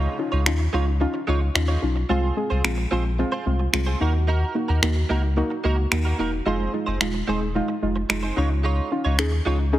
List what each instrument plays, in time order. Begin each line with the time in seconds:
Already playing: clean electric guitar G#3 D#4 F4 C#5, downlifter
0.18 synth stab C#4 D#4 F4, muted clean electric guitar stroke
0.32 sub bass C#2, clean electric guitar G#3 D#4 F4 C#5
0.46 sub bass D#2, synth stab C#4 D#4 F4, finger snap
0.59 muted clean electric guitar stroke
0.73 sub bass C#2, clean electric guitar G#3 D#4 F4 C#5, synth stab C#4 D#4 F4
0.87 muted clean electric guitar stroke
1.00 synth stab C#4 D#4 F4, muted clean electric guitar stroke
1.14 muted clean electric guitar stroke
1.27 sub bass C#2, clean electric guitar G#3 D#4 F4 C#5, synth stab C#4 D#4 F4
1.41 muted clean electric guitar stroke
1.55 sub bass D#2, synth stab C#4 D#4 F4, finger snap, muted clean electric guitar stroke
1.68 clean electric guitar G#3 D#4 F4 C#5
1.82 sub bass B1, synth stab C#4 D#4 F4, muted clean electric guitar stroke
1.96 muted clean electric guitar stroke
2.09 sub bass C2, synth stab G#3 C4 F4, clean electric guitar C4 F4 G#4 C5
2.37 synth stab G#3 C4 G#4, muted clean electric guitar stroke
2.50 sub bass C2, clean electric guitar C4 F4 G#4 C5
2.64 sub bass A#1, synth stab G#3 C4 F4, finger snap, muted clean electric guitar stroke
2.78 muted clean electric guitar stroke
2.91 sub bass A#1, synth stab G#3 C4 F4, clean electric guitar C4 F4 G#4 C5
3.05 muted clean electric guitar stroke
3.19 synth stab G#3 C4 F4, muted clean electric guitar stroke
3.32 clean electric guitar C4 F4 G#4 C5
3.46 sub bass C2, synth stab G#3 C4 F4, muted clean electric guitar stroke
3.59 muted clean electric guitar stroke
3.73 sub bass C2, synth stab G#3 C4 F4, finger snap, muted clean electric guitar stroke
3.86 clean electric guitar C4 F4 G#4 C5
4.00 sub bass D#2, clean electric guitar A#3 D#4 F#4 A#4, synth stab A#3 D#4 F#4
4.14 muted clean electric guitar stroke
4.27 clean electric guitar A#3 D#4 F#4 A#4
4.55 synth stab A#3 D#4 F#4, muted clean electric guitar stroke
4.68 sub bass D#2, clean electric guitar A#3 D#4 F#4 A#4
4.82 sub bass D#2, synth stab A#3 D#4 F#4, finger snap, muted clean electric guitar stroke
4.96 muted clean electric guitar stroke
5.09 sub bass C#2, clean electric guitar A#3 D#4 F#4 A#4, synth stab A#3 D#4 F#4
5.23 muted clean electric guitar stroke
5.37 synth stab A#3 D#4 F#4, muted clean electric guitar stroke
5.50 muted clean electric guitar stroke
5.64 sub bass C#2, clean electric guitar A#3 D#4 F#4 A#4, synth stab A#3 D#4 F#4
5.78 muted clean electric guitar stroke
5.91 sub bass D#2, synth stab A#3 D#4 F#4, finger snap, muted clean electric guitar stroke
6.05 clean electric guitar A#3 D#4 F#4 A#4
6.18 sub bass E1, clean electric guitar A#3 D#4 F#4 A#4, synth stab A#3 D#4 F#4
6.46 sub bass F1, synth stab G#3 D#4 F4, clean electric guitar C4 D#4 G#4 C5
6.73 synth stab G#3 D#4 F4, muted clean electric guitar stroke
6.86 sub bass F1, clean electric guitar C4 D#4 G#4 C5
7.01 sub bass D#1, synth stab G#3 D#4 F4, finger snap
7.14 muted clean electric guitar stroke
7.27 sub bass D#1, synth stab G#3 D#4 G#4, clean electric guitar C4 D#4 G#4 C5
7.41 muted clean electric guitar stroke
7.55 synth stab G#3 D#4 F4, muted clean electric guitar stroke
7.68 muted clean electric guitar stroke
7.82 sub bass F1, synth stab G#3 D#4 F4
7.96 muted clean electric guitar stroke
8.09 sub bass F1, synth stab G#3 D#4 F4, finger snap, muted clean electric guitar stroke
8.23 clean electric guitar C4 D#4 G#4 C5
8.36 sub bass C#2, clean electric guitar G#3 D#4 F4 C#5, synth stab C#4 D#4 F4
8.50 muted clean electric guitar stroke
8.63 clean electric guitar G#3 D#4 F4 C#5
8.91 synth stab C#4 D#4 F4, muted clean electric guitar stroke
9.05 sub bass C#2, clean electric guitar G#3 D#4 F4 C#5
9.18 sub bass D#2, synth stab C#4 D#4 G#4, finger snap
9.32 muted clean electric guitar stroke
9.45 sub bass C#2, clean electric guitar G#3 D#4 F4 C#5, synth stab C#4 D#4 F4
9.59 muted clean electric guitar stroke
9.73 synth stab C#4 D#4 G#4, muted clean electric guitar stroke